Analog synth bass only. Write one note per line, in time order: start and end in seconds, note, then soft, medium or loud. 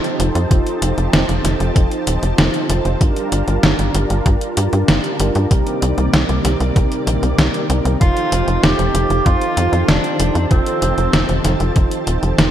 0.20 0.31 F1 loud
0.35 0.46 F2 medium
0.51 0.62 F1 loud
0.82 0.93 F1 medium
0.98 1.09 F1 medium
1.13 1.25 F1 medium
1.29 1.40 F1 medium
1.45 1.56 F1 medium
1.60 1.72 F1 medium
1.76 1.87 F1 loud
2.07 2.18 D#1 medium
2.23 2.34 F1 medium
2.38 2.50 F1 loud
2.70 2.81 F1 medium
2.85 2.96 F1 medium
3.01 3.12 G1 loud
3.32 3.43 G1 medium
3.48 3.59 G1 medium
3.63 3.75 G1 loud
3.79 3.90 G1 medium
3.95 4.06 G1 medium
4.10 4.22 G1 medium
4.26 4.37 G2 loud
4.57 4.68 G2 medium
4.73 4.84 G2 medium
4.89 5.00 G1 loud
5.20 5.31 G1 medium
5.36 5.47 G2 medium
5.51 5.62 C2 loud
5.82 5.93 C2 medium
5.98 6.09 C2 medium
6.14 6.25 C2 loud
6.29 6.40 C2 medium
6.45 6.56 C2 medium
6.60 6.72 C2 medium
6.76 6.87 C2 loud
7.07 7.18 A#1 medium
7.23 7.34 C2 medium
7.38 7.50 C2 loud
7.70 7.81 C2 loud
7.85 7.96 C2 medium
8.01 8.12 F1 loud
8.32 8.43 F1 medium
8.48 8.59 F1 medium
8.63 8.75 F1 loud
8.79 8.90 F1 medium
8.95 9.06 F1 medium
9.10 9.21 F1 medium
9.26 9.37 F2 loud
9.57 9.68 F2 medium
9.73 9.84 F2 medium
9.88 10.00 F1 loud
10.20 10.31 F1 medium
10.35 10.46 F2 medium
10.51 10.62 F1 loud
10.82 10.93 F1 medium
10.98 11.09 F1 medium
11.13 11.25 F1 medium
11.29 11.40 F1 medium
11.45 11.56 F1 medium
11.60 11.72 F1 medium
11.76 11.87 F1 loud
12.07 12.18 D#1 medium
12.23 12.34 F1 medium
12.38 12.50 F1 loud